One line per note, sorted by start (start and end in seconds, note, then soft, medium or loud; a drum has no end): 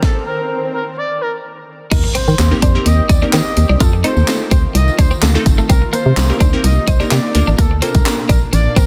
0.00 0.23 A4 loud
0.00 kick loud
0.00 snare medium
0.00 swell medium
0.27 0.60 A#4 medium
0.74 0.84 A#4 medium
0.97 1.17 D5 medium
1.21 1.31 A#4 medium
1.91 2.07 D#2 loud
1.91 5.66 D#3 medium
1.91 3.79 C4 medium
1.91 2.01 D#4 medium
1.91 3.79 G4 medium
1.91 2.11 A#4 loud
1.91 kick loud
1.91 closed hi-hat loud
1.91 crash loud
1.91 tambourine medium
1.91 impact medium
2.04 muted clean electric guitar stroke soft
2.15 2.24 C4 medium
2.15 2.49 C5 medium
2.15 closed hi-hat medium
2.15 tambourine soft
2.28 2.35 D#3 loud
2.28 tambourine soft
2.39 2.54 D#2 loud
2.39 snare medium
2.39 clap loud
2.39 closed hi-hat loud
2.39 tambourine medium
2.51 2.68 A#3 medium
2.51 2.68 C4 medium
2.51 2.68 D#4 medium
2.51 2.68 G4 medium
2.51 2.68 A#4 medium
2.62 2.77 F2 loud
2.62 2.72 D4 medium
2.62 2.73 C5 medium
2.62 kick loud
2.62 closed hi-hat medium
2.62 tambourine soft
2.75 3.08 A#3 medium
2.75 3.08 C4 medium
2.75 3.08 D#4 medium
2.75 3.08 G4 medium
2.75 3.08 A#4 loud
2.86 3.01 D#2 loud
2.86 3.06 D#5 medium
2.86 muted clean electric guitar stroke soft
2.86 closed hi-hat loud
2.86 tambourine soft
3.09 3.25 D#2 loud
3.09 3.19 D#4 medium
3.09 3.20 D5 medium
3.09 kick loud
3.09 closed hi-hat medium
3.09 tambourine medium
3.22 3.30 A#3 medium
3.22 3.30 C4 medium
3.22 3.31 D4 medium
3.22 3.30 D#4 medium
3.22 3.30 G4 medium
3.22 3.30 A#4 medium
3.33 3.41 D#3 loud
3.33 3.80 A#3 medium
3.33 3.80 C4 medium
3.33 3.43 C4 medium
3.33 3.80 D#4 medium
3.33 3.81 G4 medium
3.33 3.81 A#4 medium
3.33 3.67 D#5 medium
3.33 snare loud
3.33 clap loud
3.33 closed hi-hat loud
3.33 tambourine loud
3.57 3.65 D#2 loud
3.57 muted clean electric guitar stroke soft
3.57 closed hi-hat medium
3.57 tambourine soft
3.69 3.77 C2 medium
3.69 3.78 D4 medium
3.80 4.03 F2 loud
3.80 5.68 A3 medium
3.80 5.68 F4 medium
3.80 3.90 F4 loud
3.80 4.00 A4 loud
3.80 kick loud
3.80 closed hi-hat loud
3.80 tambourine medium
3.93 muted clean electric guitar stroke soft
4.04 4.21 A3 medium
4.04 4.21 C4 medium
4.04 4.21 D#4 medium
4.04 4.14 D#4 medium
4.04 4.22 F4 medium
4.04 4.22 A4 medium
4.04 4.38 C5 medium
4.04 closed hi-hat medium
4.04 tambourine soft
4.17 4.24 D#2 medium
4.17 tambourine soft
4.28 4.95 A3 medium
4.28 4.95 C4 medium
4.28 4.95 D#4 medium
4.28 4.96 F4 medium
4.28 4.96 A4 medium
4.28 snare loud
4.28 clap loud
4.28 closed hi-hat loud
4.28 tambourine medium
4.51 4.66 D2 loud
4.51 4.61 C4 medium
4.51 4.62 C5 medium
4.51 kick loud
4.51 closed hi-hat medium
4.51 tambourine soft
4.75 4.90 C2 loud
4.75 4.95 D#5 medium
4.75 muted clean electric guitar stroke soft
4.75 closed hi-hat loud
4.75 tambourine soft
4.88 tambourine soft
4.99 5.14 D2 loud
4.99 5.08 D4 medium
4.99 5.09 C5 loud
4.99 kick medium
4.99 closed hi-hat medium
4.99 tambourine medium
5.11 5.19 C4 medium
5.11 tambourine soft
5.22 5.37 D2 medium
5.22 5.32 A3 medium
5.22 snare loud
5.22 clap loud
5.22 closed hi-hat loud
5.22 tambourine loud
5.35 5.70 A3 loud
5.35 5.70 C4 loud
5.35 5.70 D#4 medium
5.35 5.70 F4 medium
5.35 5.70 A4 loud
5.35 muted clean electric guitar stroke soft
5.46 5.61 G1 loud
5.46 kick loud
5.46 closed hi-hat medium
5.46 tambourine soft
5.58 5.67 A3 medium
5.58 tambourine soft
5.69 5.85 C2 loud
5.69 7.33 C3 medium
5.69 7.33 A#3 medium
5.69 5.79 C4 medium
5.69 7.33 D#4 medium
5.69 5.89 A#4 loud
5.69 kick loud
5.69 closed hi-hat loud
5.69 tambourine medium
5.82 muted clean electric guitar stroke soft
5.93 6.02 A#3 medium
5.93 6.27 C5 medium
5.93 closed hi-hat medium
5.93 tambourine soft
6.06 6.13 C3 loud
6.17 6.32 C2 loud
6.17 snare medium
6.17 clap loud
6.17 closed hi-hat loud
6.17 tambourine medium
6.29 6.46 A#3 medium
6.29 6.46 C4 medium
6.29 6.46 D#4 medium
6.29 6.46 G4 medium
6.29 6.46 A#4 medium
6.40 6.55 D2 medium
6.40 6.50 D4 medium
6.40 6.51 C5 medium
6.40 kick medium
6.40 closed hi-hat medium
6.40 tambourine soft
6.53 6.86 A#3 medium
6.53 6.86 C4 medium
6.53 6.86 D#4 medium
6.53 6.86 G4 medium
6.53 6.86 A#4 loud
6.64 6.79 C2 loud
6.64 6.84 D#5 medium
6.64 muted clean electric guitar stroke soft
6.64 closed hi-hat medium
6.64 tambourine soft
6.88 7.03 C2 loud
6.88 6.97 D#4 medium
6.88 6.98 C5 medium
6.88 kick medium
6.88 closed hi-hat medium
6.88 tambourine medium
7.00 7.08 A#3 medium
7.00 7.08 C4 medium
7.00 7.08 D4 medium
7.00 7.08 D#4 medium
7.00 7.08 G4 medium
7.00 7.08 A#4 medium
7.00 tambourine soft
7.11 7.19 C3 loud
7.11 7.34 A#3 medium
7.11 7.21 C4 medium
7.11 7.35 C4 medium
7.11 7.35 D#4 medium
7.11 7.35 G4 medium
7.11 7.34 A#4 medium
7.11 7.45 D5 medium
7.11 snare loud
7.11 clap loud
7.11 closed hi-hat loud
7.11 tambourine loud
7.35 7.43 D2 loud
7.35 8.87 A#2 medium
7.35 7.73 A#3 medium
7.35 8.87 A#3 medium
7.35 7.73 D4 medium
7.35 8.87 D4 medium
7.35 7.73 F4 medium
7.35 7.73 A4 medium
7.35 7.73 A#4 medium
7.35 muted clean electric guitar stroke soft
7.35 closed hi-hat medium
7.35 tambourine medium
7.47 7.55 A1 medium
7.47 7.56 D4 medium
7.47 tambourine soft
7.58 7.81 D2 loud
7.58 7.68 A#3 medium
7.58 7.78 A4 loud
7.58 kick loud
7.58 closed hi-hat loud
7.58 tambourine medium
7.71 muted clean electric guitar stroke soft
7.82 7.99 A#3 medium
7.82 7.92 C4 medium
7.82 7.99 D4 medium
7.82 7.99 F4 medium
7.82 7.99 A4 medium
7.82 8.16 A#4 medium
7.82 8.00 C5 medium
7.82 closed hi-hat medium
7.82 tambourine soft
7.95 8.02 C2 loud
7.95 kick loud
7.95 closed hi-hat medium
7.95 tambourine soft
8.05 8.73 A#3 medium
8.05 8.73 D4 medium
8.05 8.73 F4 medium
8.05 8.73 A4 medium
8.05 8.73 A#4 medium
8.05 snare loud
8.05 clap loud
8.05 closed hi-hat loud
8.05 tambourine medium
8.29 8.44 A#1 loud
8.29 8.39 D4 medium
8.29 8.40 A#4 medium
8.29 kick loud
8.29 closed hi-hat medium
8.29 tambourine soft
8.53 8.68 A1 loud
8.53 8.73 D5 medium
8.53 muted clean electric guitar stroke soft
8.53 closed hi-hat medium
8.53 tambourine soft
8.76 8.87 A#1 medium
8.76 8.86 C4 medium
8.76 8.87 A#4 loud
8.76 kick medium
8.76 closed hi-hat medium
8.76 tambourine medium